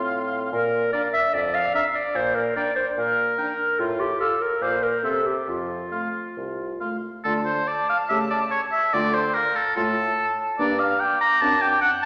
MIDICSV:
0, 0, Header, 1, 6, 480
1, 0, Start_track
1, 0, Key_signature, -1, "major"
1, 0, Tempo, 408441
1, 622, Time_signature, 4, 2, 24, 8
1, 5423, Tempo, 437956
1, 8310, Key_signature, -1, "minor"
1, 8783, Tempo, 414938
1, 13841, End_track
2, 0, Start_track
2, 0, Title_t, "Flute"
2, 0, Program_c, 0, 73
2, 0, Note_on_c, 0, 84, 53
2, 584, Note_off_c, 0, 84, 0
2, 1100, Note_on_c, 0, 82, 46
2, 1186, Note_off_c, 0, 82, 0
2, 2053, Note_on_c, 0, 82, 52
2, 2139, Note_off_c, 0, 82, 0
2, 3012, Note_on_c, 0, 82, 50
2, 3098, Note_off_c, 0, 82, 0
2, 3981, Note_on_c, 0, 82, 50
2, 4067, Note_off_c, 0, 82, 0
2, 4942, Note_on_c, 0, 84, 47
2, 5029, Note_off_c, 0, 84, 0
2, 5424, Note_on_c, 0, 86, 46
2, 5507, Note_off_c, 0, 86, 0
2, 5889, Note_on_c, 0, 84, 40
2, 5975, Note_off_c, 0, 84, 0
2, 6865, Note_on_c, 0, 84, 38
2, 6952, Note_off_c, 0, 84, 0
2, 7819, Note_on_c, 0, 84, 38
2, 7908, Note_off_c, 0, 84, 0
2, 8316, Note_on_c, 0, 81, 68
2, 10195, Note_off_c, 0, 81, 0
2, 10242, Note_on_c, 0, 79, 61
2, 10728, Note_on_c, 0, 77, 57
2, 10745, Note_off_c, 0, 79, 0
2, 11200, Note_on_c, 0, 81, 64
2, 11218, Note_off_c, 0, 77, 0
2, 12146, Note_off_c, 0, 81, 0
2, 12153, Note_on_c, 0, 82, 71
2, 12622, Note_off_c, 0, 82, 0
2, 12638, Note_on_c, 0, 86, 75
2, 13571, Note_off_c, 0, 86, 0
2, 13591, Note_on_c, 0, 81, 70
2, 13841, Note_off_c, 0, 81, 0
2, 13841, End_track
3, 0, Start_track
3, 0, Title_t, "Oboe"
3, 0, Program_c, 1, 68
3, 0, Note_on_c, 1, 77, 52
3, 592, Note_off_c, 1, 77, 0
3, 1106, Note_on_c, 1, 77, 51
3, 1275, Note_off_c, 1, 77, 0
3, 2054, Note_on_c, 1, 77, 52
3, 2226, Note_off_c, 1, 77, 0
3, 3022, Note_on_c, 1, 79, 51
3, 3192, Note_off_c, 1, 79, 0
3, 3976, Note_on_c, 1, 79, 50
3, 4149, Note_off_c, 1, 79, 0
3, 4947, Note_on_c, 1, 77, 46
3, 5118, Note_off_c, 1, 77, 0
3, 5443, Note_on_c, 1, 77, 43
3, 5605, Note_off_c, 1, 77, 0
3, 5898, Note_on_c, 1, 76, 40
3, 6068, Note_off_c, 1, 76, 0
3, 6855, Note_on_c, 1, 77, 36
3, 7031, Note_off_c, 1, 77, 0
3, 7825, Note_on_c, 1, 77, 39
3, 8000, Note_off_c, 1, 77, 0
3, 8301, Note_on_c, 1, 69, 69
3, 8410, Note_off_c, 1, 69, 0
3, 8535, Note_on_c, 1, 72, 67
3, 8777, Note_on_c, 1, 74, 64
3, 8794, Note_off_c, 1, 72, 0
3, 9023, Note_off_c, 1, 74, 0
3, 9031, Note_on_c, 1, 77, 78
3, 9138, Note_off_c, 1, 77, 0
3, 9258, Note_on_c, 1, 76, 79
3, 9368, Note_off_c, 1, 76, 0
3, 9504, Note_on_c, 1, 74, 69
3, 9615, Note_off_c, 1, 74, 0
3, 9746, Note_on_c, 1, 73, 79
3, 9858, Note_off_c, 1, 73, 0
3, 9987, Note_on_c, 1, 76, 88
3, 10234, Note_on_c, 1, 74, 88
3, 10251, Note_off_c, 1, 76, 0
3, 10471, Note_on_c, 1, 72, 76
3, 10488, Note_off_c, 1, 74, 0
3, 10705, Note_on_c, 1, 70, 82
3, 10723, Note_off_c, 1, 72, 0
3, 10951, Note_on_c, 1, 69, 77
3, 10968, Note_off_c, 1, 70, 0
3, 11184, Note_off_c, 1, 69, 0
3, 11191, Note_on_c, 1, 69, 73
3, 11904, Note_off_c, 1, 69, 0
3, 12146, Note_on_c, 1, 74, 89
3, 12386, Note_on_c, 1, 77, 79
3, 12403, Note_off_c, 1, 74, 0
3, 12626, Note_on_c, 1, 79, 75
3, 12643, Note_off_c, 1, 77, 0
3, 12858, Note_off_c, 1, 79, 0
3, 12865, Note_on_c, 1, 82, 98
3, 13102, Note_on_c, 1, 81, 91
3, 13119, Note_off_c, 1, 82, 0
3, 13336, Note_on_c, 1, 79, 95
3, 13354, Note_off_c, 1, 81, 0
3, 13559, Note_off_c, 1, 79, 0
3, 13566, Note_on_c, 1, 78, 97
3, 13678, Note_off_c, 1, 78, 0
3, 13841, End_track
4, 0, Start_track
4, 0, Title_t, "Clarinet"
4, 0, Program_c, 2, 71
4, 0, Note_on_c, 2, 65, 67
4, 378, Note_off_c, 2, 65, 0
4, 619, Note_on_c, 2, 70, 83
4, 1062, Note_off_c, 2, 70, 0
4, 1088, Note_on_c, 2, 74, 76
4, 1198, Note_off_c, 2, 74, 0
4, 1329, Note_on_c, 2, 76, 82
4, 1566, Note_on_c, 2, 74, 87
4, 1584, Note_off_c, 2, 76, 0
4, 1812, Note_on_c, 2, 77, 83
4, 1830, Note_off_c, 2, 74, 0
4, 2050, Note_off_c, 2, 77, 0
4, 2055, Note_on_c, 2, 76, 78
4, 2162, Note_off_c, 2, 76, 0
4, 2286, Note_on_c, 2, 74, 84
4, 2537, Note_on_c, 2, 72, 96
4, 2555, Note_off_c, 2, 74, 0
4, 2765, Note_on_c, 2, 70, 79
4, 2783, Note_off_c, 2, 72, 0
4, 3001, Note_off_c, 2, 70, 0
4, 3008, Note_on_c, 2, 74, 78
4, 3235, Note_off_c, 2, 74, 0
4, 3242, Note_on_c, 2, 72, 72
4, 3352, Note_off_c, 2, 72, 0
4, 3487, Note_on_c, 2, 70, 81
4, 4459, Note_on_c, 2, 65, 80
4, 4476, Note_off_c, 2, 70, 0
4, 4701, Note_on_c, 2, 67, 74
4, 4719, Note_off_c, 2, 65, 0
4, 4928, Note_off_c, 2, 67, 0
4, 4935, Note_on_c, 2, 69, 70
4, 5189, Note_on_c, 2, 70, 67
4, 5207, Note_off_c, 2, 69, 0
4, 5435, Note_on_c, 2, 72, 77
4, 5451, Note_off_c, 2, 70, 0
4, 5662, Note_on_c, 2, 70, 66
4, 5678, Note_off_c, 2, 72, 0
4, 5886, Note_on_c, 2, 69, 62
4, 5902, Note_off_c, 2, 70, 0
4, 6134, Note_on_c, 2, 67, 59
4, 6150, Note_off_c, 2, 69, 0
4, 6372, Note_off_c, 2, 67, 0
4, 6385, Note_on_c, 2, 65, 65
4, 8044, Note_off_c, 2, 65, 0
4, 8315, Note_on_c, 2, 65, 54
4, 8480, Note_off_c, 2, 65, 0
4, 9270, Note_on_c, 2, 67, 57
4, 9437, Note_off_c, 2, 67, 0
4, 10246, Note_on_c, 2, 65, 59
4, 10410, Note_off_c, 2, 65, 0
4, 11196, Note_on_c, 2, 65, 61
4, 11364, Note_off_c, 2, 65, 0
4, 12160, Note_on_c, 2, 62, 64
4, 12325, Note_off_c, 2, 62, 0
4, 13111, Note_on_c, 2, 62, 68
4, 13277, Note_off_c, 2, 62, 0
4, 13841, End_track
5, 0, Start_track
5, 0, Title_t, "French horn"
5, 0, Program_c, 3, 60
5, 0, Note_on_c, 3, 60, 54
5, 589, Note_off_c, 3, 60, 0
5, 1099, Note_on_c, 3, 62, 52
5, 1270, Note_off_c, 3, 62, 0
5, 2047, Note_on_c, 3, 62, 51
5, 2220, Note_off_c, 3, 62, 0
5, 3007, Note_on_c, 3, 62, 51
5, 3180, Note_off_c, 3, 62, 0
5, 3973, Note_on_c, 3, 62, 56
5, 4147, Note_off_c, 3, 62, 0
5, 4946, Note_on_c, 3, 65, 45
5, 5118, Note_off_c, 3, 65, 0
5, 5424, Note_on_c, 3, 65, 42
5, 5590, Note_off_c, 3, 65, 0
5, 5879, Note_on_c, 3, 60, 43
5, 6054, Note_off_c, 3, 60, 0
5, 6850, Note_on_c, 3, 57, 36
5, 7026, Note_off_c, 3, 57, 0
5, 7825, Note_on_c, 3, 57, 40
5, 8000, Note_off_c, 3, 57, 0
5, 8307, Note_on_c, 3, 57, 56
5, 8474, Note_off_c, 3, 57, 0
5, 9272, Note_on_c, 3, 57, 55
5, 9439, Note_off_c, 3, 57, 0
5, 10243, Note_on_c, 3, 57, 60
5, 10409, Note_off_c, 3, 57, 0
5, 11203, Note_on_c, 3, 57, 61
5, 11369, Note_off_c, 3, 57, 0
5, 12155, Note_on_c, 3, 58, 62
5, 12322, Note_off_c, 3, 58, 0
5, 13109, Note_on_c, 3, 60, 64
5, 13276, Note_off_c, 3, 60, 0
5, 13841, End_track
6, 0, Start_track
6, 0, Title_t, "Bassoon"
6, 0, Program_c, 4, 70
6, 0, Note_on_c, 4, 45, 57
6, 580, Note_off_c, 4, 45, 0
6, 614, Note_on_c, 4, 46, 69
6, 1013, Note_off_c, 4, 46, 0
6, 1568, Note_on_c, 4, 41, 62
6, 1967, Note_off_c, 4, 41, 0
6, 2526, Note_on_c, 4, 46, 72
6, 2927, Note_off_c, 4, 46, 0
6, 3494, Note_on_c, 4, 46, 57
6, 3893, Note_off_c, 4, 46, 0
6, 4457, Note_on_c, 4, 45, 66
6, 4858, Note_off_c, 4, 45, 0
6, 5423, Note_on_c, 4, 46, 52
6, 5808, Note_off_c, 4, 46, 0
6, 5888, Note_on_c, 4, 48, 56
6, 6287, Note_off_c, 4, 48, 0
6, 6369, Note_on_c, 4, 41, 55
6, 6773, Note_off_c, 4, 41, 0
6, 7345, Note_on_c, 4, 36, 43
6, 7748, Note_off_c, 4, 36, 0
6, 8315, Note_on_c, 4, 50, 65
6, 8707, Note_off_c, 4, 50, 0
6, 9268, Note_on_c, 4, 49, 58
6, 9672, Note_off_c, 4, 49, 0
6, 10232, Note_on_c, 4, 50, 71
6, 10634, Note_off_c, 4, 50, 0
6, 11191, Note_on_c, 4, 45, 59
6, 11596, Note_off_c, 4, 45, 0
6, 12156, Note_on_c, 4, 43, 77
6, 12553, Note_off_c, 4, 43, 0
6, 13104, Note_on_c, 4, 42, 68
6, 13504, Note_off_c, 4, 42, 0
6, 13841, End_track
0, 0, End_of_file